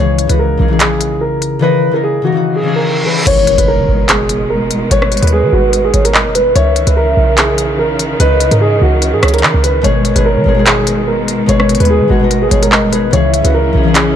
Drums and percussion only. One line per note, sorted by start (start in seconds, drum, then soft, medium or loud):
0.19 closed hi-hat medium
0.29 closed hi-hat medium
0.80 clap loud
0.80 closed hi-hat medium
1.01 closed hi-hat medium
1.42 closed hi-hat medium
3.27 closed hi-hat medium
3.27 crash loud
3.47 closed hi-hat medium
3.58 closed hi-hat medium
4.09 clap loud
4.09 closed hi-hat medium
4.29 closed hi-hat medium
4.71 closed hi-hat medium
4.91 closed hi-hat medium
5.02 cross-stick medium
5.12 closed hi-hat medium
5.17 closed hi-hat medium
5.23 closed hi-hat medium
5.27 closed hi-hat medium
5.73 closed hi-hat medium
5.94 closed hi-hat medium
6.05 closed hi-hat medium
6.14 clap loud
6.35 closed hi-hat medium
6.56 closed hi-hat medium
6.76 closed hi-hat medium
6.87 closed hi-hat medium
7.37 clap loud
7.37 closed hi-hat medium
7.58 closed hi-hat medium
7.99 closed hi-hat medium
8.20 closed hi-hat medium
8.40 closed hi-hat medium
8.51 closed hi-hat medium
9.02 closed hi-hat medium
9.23 cross-stick loud
9.23 closed hi-hat medium
9.28 closed hi-hat medium
9.34 closed hi-hat medium
9.38 closed hi-hat soft
9.43 clap loud
9.64 closed hi-hat medium
9.84 closed hi-hat medium
10.05 closed hi-hat medium
10.16 closed hi-hat medium
10.66 clap loud
10.66 closed hi-hat medium
10.87 closed hi-hat medium
11.28 closed hi-hat medium
11.49 closed hi-hat medium
11.60 cross-stick medium
11.69 closed hi-hat medium
11.75 closed hi-hat medium
11.80 closed hi-hat medium
11.85 closed hi-hat medium
12.31 closed hi-hat medium
12.51 closed hi-hat medium
12.63 closed hi-hat loud
12.72 clap loud
12.93 closed hi-hat medium
13.13 closed hi-hat medium
13.34 closed hi-hat medium
13.45 closed hi-hat medium
13.95 clap loud
13.95 closed hi-hat medium